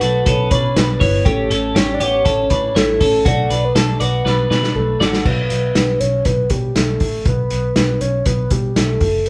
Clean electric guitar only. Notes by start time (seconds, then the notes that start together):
0.01 A3 F#4
0.26 C#4 A4
0.51 D4 B4
1.00 E4 C#5
1.25 C#4 G4
1.50 C#4 A4
1.75 C#4 G4
2.00 B3 G4
2.25 C#4 A4
2.50 D4 B4
2.75 E4 C#5
3.01 C#4 A4
3.25 A3 F#4
3.50 D4 B4
3.75 D4 A4
4.00 F#4 D5
4.25 D4 B4
4.50 D4 B4
5.00 F#4 D5